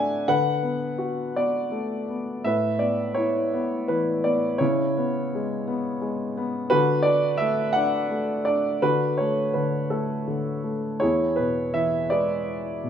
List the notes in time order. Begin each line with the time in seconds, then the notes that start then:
Already playing: D3 A3 D4 F#4 B4 D5 E5 F#5 G#5
0.28 D3 B4 F#5
0.63 B3
0.98 F#4
1.36 B3 D5
1.72 A3
2.08 B3
2.44 A2 B4 E5
2.79 B3 D5
3.15 E4 C#5
3.54 B3
3.88 E3 B4
4.24 B3 D5
4.58 C#3 E4 C#5
4.98 B3
5.35 G#3
5.68 B3
6.02 G#3
6.37 B3
6.70 D3 F#4 B4
7.03 D4 D5
7.38 A3 E5
7.73 D4 F#5
8.10 A3
8.45 D4 D5
8.82 D3 F#4 B4
9.18 A3 C#5
9.54 D3 B4
9.90 A3 A4
10.28 D3
10.64 A3
11.00 E2 E4 G#4 C#5
11.36 B2 B4
11.74 E3 E5
12.10 G#3 G#4 B4 D5
12.84 B2